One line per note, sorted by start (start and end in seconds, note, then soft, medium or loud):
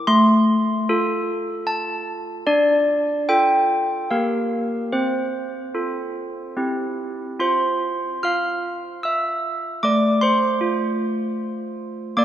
0.07 0.85 A3 medium
0.07 1.63 C6 loud
0.89 2.44 F4 medium
0.89 2.44 A4 medium
1.67 2.44 A5 loud
2.47 3.27 D4 medium
2.47 3.26 D5 loud
3.29 4.07 F4 medium
3.29 4.07 A4 medium
3.29 4.07 G5 loud
4.11 4.91 A#3 medium
4.11 4.89 G4 soft
4.11 4.89 A#4 soft
4.11 4.90 F5 medium
4.92 5.73 C4 medium
4.92 6.53 C5 medium
5.75 6.53 F4 soft
5.75 6.53 A4 soft
6.57 7.36 C4 medium
6.57 7.35 E4 soft
6.57 7.35 G4 soft
7.40 8.22 F4 medium
7.40 8.19 C5 medium
7.40 8.19 C6 medium
8.23 9.82 F4 soft
8.23 9.00 F5 medium
8.23 9.00 F6 medium
9.03 9.79 E5 medium
9.03 9.79 E6 medium
9.83 12.13 A3 medium
9.83 10.19 D5 medium
9.83 10.20 D6 medium
10.21 12.14 C5 medium
10.21 12.13 C6 medium
10.61 12.17 F4 medium
12.17 12.25 A#3 medium
12.17 12.25 D5 medium
12.17 12.25 D6 medium